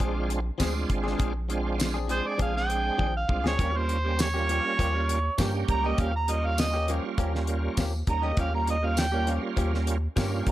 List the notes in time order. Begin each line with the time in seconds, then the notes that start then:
Already playing: G#3 C4 D4 F4
0.00 A#1 F3 C4 D4 G#4, kick, closed hi-hat
0.15 muted clean electric guitar stroke
0.29 muted clean electric guitar stroke, closed hi-hat
0.58 D2 F3 G#3 C4 D4 F4 G#4, kick, snare, closed hi-hat, tambourine
0.75 muted clean electric guitar stroke
0.88 G#1, muted clean electric guitar stroke, kick, closed hi-hat
1.03 C4 D4 G#4, snare
1.18 A#1 F3 C4 D4 G#4, kick, closed hi-hat
1.34 muted clean electric guitar stroke
1.49 G#3 C4 D4 F4, muted clean electric guitar stroke, closed hi-hat
1.79 muted clean electric guitar stroke, snare, closed hi-hat, tambourine
1.94 C4 D4 G#4
2.07 F3 G#3 C4 D4 G#4 C5, closed hi-hat
2.24 D5, muted clean electric guitar stroke
2.38 A#1 F3 C4 D4 G#4 F5, kick, closed hi-hat
2.54 G5, muted clean electric guitar stroke, snare
2.69 muted clean electric guitar stroke, closed hi-hat
2.98 A#1 F3 C4 D4 G#4, kick, high tom
3.14 F5, muted clean electric guitar stroke
3.29 C2 G#3 C4 D4 F4, muted clean electric guitar stroke, kick
3.44 D2 C4 D4 G#4 C#5, snare
3.58 D#2 F3 G3 A#3 C#4 F4 G4, kick, closed hi-hat
3.74 G3 A#3 C#4 F4 C5, muted clean electric guitar stroke
3.89 muted clean electric guitar stroke, closed hi-hat
4.04 G3 A#3 C#4 G4
4.18 C#5, muted clean electric guitar stroke, snare, closed hi-hat, tambourine
4.34 G3 A#3 C#4 F4 G4
4.48 F3 A#3 C#4 G4, closed hi-hat
4.64 muted clean electric guitar stroke
4.79 D#2 F3 A#3 C#4 G4, kick, closed hi-hat
4.94 muted clean electric guitar stroke
5.09 muted clean electric guitar stroke, closed hi-hat
5.38 G2 F3 G3 A#3 C#4 G4, kick, snare, closed hi-hat, tambourine
5.54 muted clean electric guitar stroke
5.68 C#2 A#5, muted clean electric guitar stroke, kick, closed hi-hat
5.84 A#3 C#4 G4 D#5
5.98 D#2 F3 A#3 C#4 G4 F5, kick, closed hi-hat
6.14 A#5, muted clean electric guitar stroke
6.28 G3 A#3 C#4 F4 D#5, muted clean electric guitar stroke, closed hi-hat
6.46 F5
6.58 D#5, muted clean electric guitar stroke, snare, closed hi-hat, tambourine
6.74 A#3 C#4 G4
6.88 F3 G3 A#3 C#4 F4 G4, closed hi-hat
7.04 muted clean electric guitar stroke
7.18 D#2 F3 A#3 C#4 G4, kick, closed hi-hat
7.34 muted clean electric guitar stroke, snare
7.47 muted clean electric guitar stroke, closed hi-hat
7.77 D#2 F3 A#3 C#4 G4, kick, snare, closed hi-hat, tambourine
7.94 muted clean electric guitar stroke
8.07 D#2 G3 A#3 C#4 D#4 A#5, muted clean electric guitar stroke, kick, closed hi-hat
8.23 A#3 C#4 G4 D#5
8.37 D#2 F3 G3 A#3 C#4 F4 G4 F5, kick, closed hi-hat
8.53 G3 A#3 C#4 F4 A#5, muted clean electric guitar stroke
8.67 D#5, muted clean electric guitar stroke, closed hi-hat
8.82 G3 A#3 C#4 F4 F5
8.97 G5, muted clean electric guitar stroke, snare, closed hi-hat, tambourine
9.12 G3 A#3 C#4 F4 G4
9.27 F3 A#3 C#4 G4, closed hi-hat
9.43 muted clean electric guitar stroke
9.57 D#2 F3 A#3 C#4 G4, kick, closed hi-hat
9.73 muted clean electric guitar stroke, snare
9.87 muted clean electric guitar stroke, closed hi-hat
10.16 G2 F3 G3 A#3 C#4 F4 G4, kick, snare, closed hi-hat, tambourine
10.32 muted clean electric guitar stroke
10.47 C2, muted clean electric guitar stroke, kick, closed hi-hat